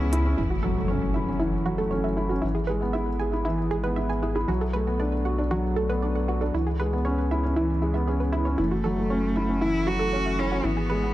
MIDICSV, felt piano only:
0, 0, Header, 1, 2, 480
1, 0, Start_track
1, 0, Key_signature, 3, "minor"
1, 0, Tempo, 512821
1, 359, Time_signature, 4, 2, 24, 8
1, 10425, End_track
2, 0, Start_track
2, 0, Title_t, "Felt piano"
2, 0, Program_c, 0, 0
2, 0, Control_c, 0, 64, 127
2, 0, Note_on_c, 0, 52, 81
2, 0, Note_on_c, 0, 56, 74
2, 0, Note_on_c, 0, 59, 76
2, 0, Note_on_c, 0, 61, 79
2, 0, Note_on_c, 0, 64, 71
2, 118, Note_off_c, 0, 64, 0
2, 118, Note_on_c, 0, 64, 72
2, 233, Note_off_c, 0, 64, 0
2, 239, Note_off_c, 0, 61, 0
2, 239, Note_on_c, 0, 61, 72
2, 353, Note_off_c, 0, 61, 0
2, 357, Note_off_c, 0, 52, 0
2, 357, Note_on_c, 0, 52, 59
2, 371, Note_off_c, 0, 59, 0
2, 371, Control_c, 0, 64, 0
2, 372, Note_off_c, 0, 56, 0
2, 472, Note_off_c, 0, 52, 0
2, 526, Control_c, 0, 64, 127
2, 600, Note_on_c, 0, 54, 57
2, 714, Note_off_c, 0, 54, 0
2, 716, Note_on_c, 0, 57, 53
2, 832, Note_off_c, 0, 57, 0
2, 840, Note_on_c, 0, 61, 62
2, 954, Note_off_c, 0, 61, 0
2, 1082, Note_on_c, 0, 64, 53
2, 1195, Note_off_c, 0, 64, 0
2, 1200, Note_on_c, 0, 61, 53
2, 1314, Note_off_c, 0, 61, 0
2, 1319, Note_on_c, 0, 52, 68
2, 1434, Note_off_c, 0, 52, 0
2, 1559, Note_on_c, 0, 54, 58
2, 1673, Note_off_c, 0, 54, 0
2, 1676, Note_on_c, 0, 57, 65
2, 1792, Note_off_c, 0, 57, 0
2, 1797, Note_on_c, 0, 61, 63
2, 1913, Note_off_c, 0, 61, 0
2, 2037, Note_on_c, 0, 64, 59
2, 2152, Note_off_c, 0, 64, 0
2, 2156, Note_on_c, 0, 61, 58
2, 2272, Note_off_c, 0, 61, 0
2, 2277, Note_on_c, 0, 52, 65
2, 2293, Control_c, 0, 64, 0
2, 2393, Note_off_c, 0, 52, 0
2, 2452, Control_c, 0, 64, 127
2, 2519, Note_on_c, 0, 56, 61
2, 2633, Note_off_c, 0, 56, 0
2, 2639, Note_on_c, 0, 59, 57
2, 2753, Note_off_c, 0, 59, 0
2, 2759, Note_on_c, 0, 64, 63
2, 2873, Note_off_c, 0, 64, 0
2, 3003, Note_on_c, 0, 68, 54
2, 3115, Note_off_c, 0, 68, 0
2, 3120, Note_on_c, 0, 64, 56
2, 3234, Note_off_c, 0, 64, 0
2, 3238, Note_on_c, 0, 52, 69
2, 3353, Note_off_c, 0, 52, 0
2, 3485, Note_on_c, 0, 56, 60
2, 3596, Note_off_c, 0, 56, 0
2, 3599, Note_on_c, 0, 59, 61
2, 3713, Note_off_c, 0, 59, 0
2, 3719, Note_on_c, 0, 64, 60
2, 3833, Note_off_c, 0, 64, 0
2, 3956, Note_on_c, 0, 68, 58
2, 4072, Note_off_c, 0, 68, 0
2, 4075, Note_on_c, 0, 64, 60
2, 4191, Note_off_c, 0, 64, 0
2, 4192, Note_on_c, 0, 54, 65
2, 4212, Control_c, 0, 64, 0
2, 4310, Note_off_c, 0, 54, 0
2, 4353, Control_c, 0, 64, 127
2, 4440, Note_on_c, 0, 57, 59
2, 4554, Note_off_c, 0, 57, 0
2, 4558, Note_on_c, 0, 59, 56
2, 4673, Note_off_c, 0, 59, 0
2, 4680, Note_on_c, 0, 62, 62
2, 4794, Note_off_c, 0, 62, 0
2, 4919, Note_on_c, 0, 66, 57
2, 5033, Note_off_c, 0, 66, 0
2, 5040, Note_on_c, 0, 62, 60
2, 5154, Note_off_c, 0, 62, 0
2, 5162, Note_on_c, 0, 54, 70
2, 5275, Note_off_c, 0, 54, 0
2, 5403, Note_on_c, 0, 57, 62
2, 5515, Note_off_c, 0, 57, 0
2, 5520, Note_on_c, 0, 59, 64
2, 5634, Note_off_c, 0, 59, 0
2, 5643, Note_on_c, 0, 62, 59
2, 5755, Note_off_c, 0, 62, 0
2, 5883, Note_on_c, 0, 66, 60
2, 5995, Note_off_c, 0, 66, 0
2, 6005, Note_on_c, 0, 62, 61
2, 6116, Note_off_c, 0, 62, 0
2, 6123, Note_on_c, 0, 52, 64
2, 6129, Control_c, 0, 64, 0
2, 6235, Note_off_c, 0, 52, 0
2, 6294, Control_c, 0, 64, 127
2, 6369, Note_on_c, 0, 56, 59
2, 6478, Note_off_c, 0, 56, 0
2, 6484, Note_on_c, 0, 59, 59
2, 6596, Note_off_c, 0, 59, 0
2, 6602, Note_on_c, 0, 61, 68
2, 6715, Note_off_c, 0, 61, 0
2, 6849, Note_on_c, 0, 64, 59
2, 6958, Note_off_c, 0, 64, 0
2, 6967, Note_on_c, 0, 61, 55
2, 7077, Note_off_c, 0, 61, 0
2, 7082, Note_on_c, 0, 52, 72
2, 7195, Note_off_c, 0, 52, 0
2, 7323, Note_on_c, 0, 56, 59
2, 7435, Note_off_c, 0, 56, 0
2, 7441, Note_on_c, 0, 59, 62
2, 7554, Note_off_c, 0, 59, 0
2, 7561, Note_on_c, 0, 61, 61
2, 7674, Note_off_c, 0, 61, 0
2, 7800, Note_on_c, 0, 64, 60
2, 7914, Note_off_c, 0, 64, 0
2, 7922, Note_on_c, 0, 61, 60
2, 8035, Note_off_c, 0, 61, 0
2, 8044, Note_on_c, 0, 52, 67
2, 8053, Control_c, 0, 64, 0
2, 8156, Note_off_c, 0, 52, 0
2, 8243, Control_c, 0, 64, 127
2, 8286, Note_on_c, 0, 54, 57
2, 8397, Note_off_c, 0, 54, 0
2, 8404, Note_on_c, 0, 57, 56
2, 8516, Note_off_c, 0, 57, 0
2, 8522, Note_on_c, 0, 61, 67
2, 8635, Note_off_c, 0, 61, 0
2, 8770, Note_on_c, 0, 64, 58
2, 8879, Note_off_c, 0, 64, 0
2, 8885, Note_on_c, 0, 61, 60
2, 8996, Note_off_c, 0, 61, 0
2, 9003, Note_on_c, 0, 52, 70
2, 9115, Note_off_c, 0, 52, 0
2, 9246, Note_on_c, 0, 54, 63
2, 9357, Note_off_c, 0, 54, 0
2, 9366, Note_on_c, 0, 57, 65
2, 9477, Note_off_c, 0, 57, 0
2, 9491, Note_on_c, 0, 61, 61
2, 9599, Note_off_c, 0, 61, 0
2, 9729, Note_on_c, 0, 64, 59
2, 9838, Note_off_c, 0, 64, 0
2, 9846, Note_on_c, 0, 61, 61
2, 9957, Note_off_c, 0, 61, 0
2, 9970, Control_c, 0, 64, 0
2, 9970, Note_on_c, 0, 52, 64
2, 10079, Note_off_c, 0, 52, 0
2, 10118, Control_c, 0, 64, 127
2, 10211, Note_on_c, 0, 56, 64
2, 10319, Note_off_c, 0, 56, 0
2, 10328, Note_on_c, 0, 59, 58
2, 10425, Note_off_c, 0, 59, 0
2, 10425, End_track
0, 0, End_of_file